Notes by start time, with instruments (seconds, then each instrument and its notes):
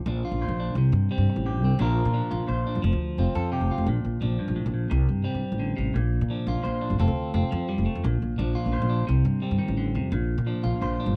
0.06 upright bass A#1, clean electric guitar F3 D4
0.25 clean electric guitar F4
0.31 upright bass A#1
0.41 clean electric guitar A#2 C5
0.48 upright bass A#1
0.60 clean electric guitar D4
0.75 upright bass C2, clean electric guitar C3
0.92 upright bass G2
1.11 clean electric guitar G3 C4
1.18 upright bass G2
1.30 muted clean electric guitar stroke
1.36 upright bass A1
1.46 clean electric guitar G2 G4
1.61 upright bass C2, clean electric guitar C4
1.79 upright bass A#1, clean electric guitar A#2 F3 D4 F4 A#4
2.05 upright bass A#2
2.13 clean electric guitar F3 D4
2.31 upright bass A#1, clean electric guitar F4
2.47 upright bass A#1, clean electric guitar A#2 C5
2.67 clean electric guitar D4
2.75 upright bass G1
2.82 upright bass F1, clean electric guitar F3
2.93 upright bass D2
3.18 upright bass F1, clean electric guitar C4 F4
3.35 upright bass F2, clean electric guitar A4
3.52 clean electric guitar C3 G4
3.61 upright bass F1
3.71 clean electric guitar F4
3.78 upright bass F1
3.86 upright bass A#1, clean electric guitar A#2
4.05 upright bass A#1
4.21 upright bass A#1, clean electric guitar F3 D4
4.39 clean electric guitar G2
4.48 upright bass A#1
4.56 clean electric guitar A2
4.66 upright bass A#1
4.74 clean electric guitar A#2
4.90 upright bass C2, clean electric guitar C3
5.09 upright bass G2
5.24 clean electric guitar G3 C4
5.34 upright bass G2
5.52 upright bass A1
5.59 clean electric guitar D3
5.77 upright bass A1, clean electric guitar C3
5.94 upright bass A#1, clean electric guitar A#2
6.21 upright bass A#2
6.30 clean electric guitar F3 D4
6.47 upright bass A#1, clean electric guitar F4
6.63 upright bass A#1, clean electric guitar A#2 C5
6.81 clean electric guitar D4
6.90 upright bass G1
6.99 upright bass F1, clean electric guitar C4 F4 A4, muted clean electric guitar stroke
7.08 upright bass D2
7.34 upright bass F1, clean electric guitar C4 F4
7.51 upright bass F2, clean electric guitar F3
7.69 clean electric guitar G3
7.78 upright bass F1
7.86 clean electric guitar A3
7.95 upright bass F2
8.04 upright bass A#1, clean electric guitar A#2
8.22 upright bass A#1
8.38 upright bass A#1, clean electric guitar F3 D4
8.55 clean electric guitar F4
8.66 upright bass A#1
8.72 clean electric guitar A#2 C5
8.82 upright bass A#1
8.90 clean electric guitar D4
9.07 upright bass C2, clean electric guitar C3
9.25 upright bass G2
9.42 clean electric guitar G3 C4
9.51 upright bass G2
9.58 clean electric guitar D#3
9.68 upright bass A1
9.77 clean electric guitar D3
9.95 upright bass F2, clean electric guitar C3
10.12 upright bass A#1, clean electric guitar A#2
10.38 upright bass A#2
10.47 clean electric guitar F3 D4
10.63 upright bass A#1, clean electric guitar F4
10.81 upright bass A#1, clean electric guitar A#2 C5
11.00 clean electric guitar D4
11.06 upright bass G1